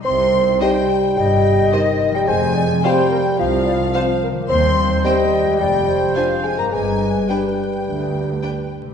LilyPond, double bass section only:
\new Staff \with { instrumentName = "Double bass section" } { \clef bass \time 4/4 \key c \minor \tempo 4 = 108 c,4 r4 g,,4 r4 | f,,4 r4 c,4 r4 | ees,4 r4 f,,4 r4 | g,,4 r4 d,4 r4 | }